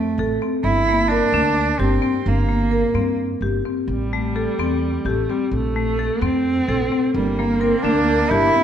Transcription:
0.00 0.42 A3 medium
0.18 0.36 A1 medium
0.18 0.33 A4 medium
0.42 0.56 C4 medium
0.63 1.20 G1 medium
0.63 1.10 E4 loud
0.89 1.02 A#3 medium
1.08 1.81 D4 loud
1.08 1.25 A#4 medium
1.33 1.70 D2 medium
1.33 1.62 D4 medium
1.79 1.98 G1 medium
1.79 2.29 C4 medium
1.79 1.94 G4 medium
2.02 2.17 C4 medium
2.26 2.82 G1 medium
2.26 3.20 A#3 medium
2.49 2.63 A#3 medium
2.71 2.86 A#4 medium
2.94 3.32 G2 medium
2.94 3.24 C4 medium
3.41 3.60 G1 medium
3.41 3.57 G4 medium
3.65 3.80 C4 medium
3.88 4.45 A1 medium
3.88 5.09 G3 medium
4.13 4.28 A3 medium
4.36 4.51 A4 medium
4.59 4.97 E2 medium
4.59 4.89 C4 medium
5.05 5.24 A1 medium
5.05 5.32 A3 medium
5.05 5.20 G4 medium
5.29 5.53 G3 medium
5.29 5.44 C4 medium
5.51 6.08 A#1 medium
5.51 6.25 A3 loud
5.76 5.90 A3 medium
5.99 6.14 A4 medium
6.21 6.59 F2 medium
6.21 6.51 C4 medium
6.21 7.14 C4 loud
6.68 6.87 A#1 medium
6.68 6.83 A4 medium
6.92 7.06 C4 medium
7.14 7.71 G1 medium
7.14 7.41 G3 medium
7.14 8.63 A#3 loud
7.39 7.53 A#3 medium
7.39 7.61 A#3 medium
7.60 7.84 C4 medium
7.60 7.75 A#4 medium
7.83 8.21 D2 medium
7.83 8.31 D4 loud
7.83 8.13 D4 medium
8.30 8.50 G1 medium
8.30 8.63 E4 loud
8.30 8.45 G4 medium
8.54 8.63 C4 medium

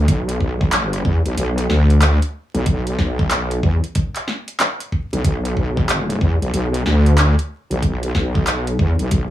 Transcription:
0.08 1.03 B1 loud
0.08 kick loud
0.08 closed hi-hat medium
0.29 closed hi-hat medium
0.40 kick medium
0.61 kick loud
0.72 clap loud
0.72 closed hi-hat medium
0.93 closed hi-hat soft
1.05 1.22 E2 medium
1.05 kick loud
1.25 1.35 B1 medium
1.25 closed hi-hat soft
1.37 1.67 B1 loud
1.37 closed hi-hat medium
1.58 closed hi-hat soft
1.69 2.19 D2 loud
1.69 snare soft
1.90 closed hi-hat soft
2.02 clap loud
2.02 closed hi-hat medium
2.22 closed hi-hat medium
2.54 2.97 B1 medium
2.54 closed hi-hat soft
2.66 kick loud
2.66 closed hi-hat medium
2.87 closed hi-hat soft
2.99 3.61 B1 loud
2.99 kick medium
2.99 snare soft
3.19 kick loud
3.31 clap loud
3.31 closed hi-hat medium
3.51 closed hi-hat soft
3.63 3.80 E2 loud
3.63 kick loud
3.84 closed hi-hat soft
3.95 kick loud
3.95 closed hi-hat medium
4.16 clap soft
4.16 closed hi-hat soft
4.28 snare soft
4.48 closed hi-hat soft
4.60 clap loud
4.60 snare soft
4.60 closed hi-hat medium
4.80 closed hi-hat medium
4.92 kick medium
5.13 5.23 B1 medium
5.13 closed hi-hat soft
5.25 6.19 B1 loud
5.25 kick loud
5.25 closed hi-hat medium
5.45 closed hi-hat medium
5.57 kick medium
5.77 kick loud
5.89 clap loud
5.89 closed hi-hat medium
6.10 closed hi-hat soft
6.21 6.38 E2 loud
6.21 kick loud
6.42 6.51 B1 loud
6.42 closed hi-hat soft
6.53 6.84 B1 medium
6.53 closed hi-hat medium
6.74 closed hi-hat soft
6.86 7.35 D2 loud
6.86 snare soft
7.06 closed hi-hat soft
7.18 clap loud
7.18 closed hi-hat medium
7.39 closed hi-hat medium
7.70 8.13 B1 medium
7.70 closed hi-hat soft
7.83 kick loud
7.83 closed hi-hat medium
8.03 closed hi-hat medium
8.15 8.77 B1 loud
8.15 kick medium
8.15 snare soft
8.35 kick loud
8.47 clap loud
8.47 closed hi-hat medium
8.67 closed hi-hat medium
8.79 8.96 E2 medium
8.79 kick loud
8.99 9.09 B1 loud
8.99 closed hi-hat soft
9.11 9.30 B1 loud
9.11 kick loud
9.11 closed hi-hat medium

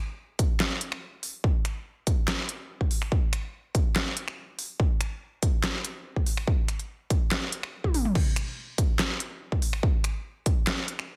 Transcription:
0.39 kick loud
0.39 closed hi-hat medium
0.60 snare loud
0.60 clap medium
0.81 closed hi-hat medium
0.92 finger snap medium
1.23 open hi-hat medium
1.44 kick loud
1.65 finger snap medium
1.65 closed hi-hat medium
2.07 kick loud
2.07 closed hi-hat medium
2.28 finger snap medium
2.28 snare loud
2.28 clap medium
2.49 closed hi-hat medium
2.81 kick medium
2.91 open hi-hat medium
3.02 finger snap medium
3.12 kick loud
3.33 finger snap medium
3.33 closed hi-hat medium
3.75 kick loud
3.75 closed hi-hat medium
3.96 snare loud
3.96 clap medium
4.17 closed hi-hat medium
4.28 finger snap medium
4.59 open hi-hat loud
4.80 kick loud
5.01 finger snap medium
5.01 closed hi-hat medium
5.43 kick loud
5.43 closed hi-hat medium
5.64 finger snap medium
5.64 snare loud
5.64 clap medium
5.85 closed hi-hat medium
6.16 kick medium
6.26 open hi-hat loud
6.37 finger snap medium
6.47 kick loud
6.68 finger snap medium
6.68 closed hi-hat medium
6.79 closed hi-hat soft
7.10 kick loud
7.10 closed hi-hat medium
7.31 snare loud
7.31 clap medium
7.52 closed hi-hat medium
7.63 finger snap medium
7.84 kick medium
7.84 high tom medium
7.94 open hi-hat medium
7.94 mid tom medium
8.05 mid tom medium
8.15 kick loud
8.15 crash medium
8.36 finger snap medium
8.36 closed hi-hat medium
8.78 kick loud
8.78 closed hi-hat medium
8.99 finger snap medium
8.99 snare loud
8.99 clap medium
9.20 closed hi-hat medium
9.52 kick medium
9.62 open hi-hat medium
9.73 finger snap medium
9.83 kick loud
10.04 finger snap medium
10.04 closed hi-hat medium
10.46 kick loud
10.46 closed hi-hat medium
10.67 snare loud
10.67 clap medium
10.88 closed hi-hat medium
10.99 finger snap medium

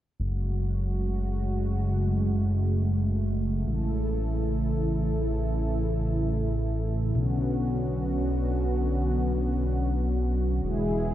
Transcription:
0.20 3.65 F#1 medium
0.20 3.64 C#3 medium
0.20 3.64 F#3 medium
0.20 3.64 G#3 medium
0.20 7.11 A3 medium
0.20 3.64 F#4 medium
3.67 7.13 A1 medium
3.67 7.12 C#3 medium
3.67 7.12 E3 medium
3.67 7.12 E4 medium
3.67 7.12 A4 medium
7.15 10.61 B1 medium
7.15 10.60 D3 medium
7.15 10.60 F#3 medium
7.15 10.60 B3 medium
7.15 10.60 C#4 medium
7.15 10.60 F#4 medium
10.63 11.14 E1 medium
10.63 11.14 B2 medium
10.63 11.14 E3 medium
10.63 11.14 G#3 medium
10.63 11.14 E4 medium
10.63 11.14 G#4 medium

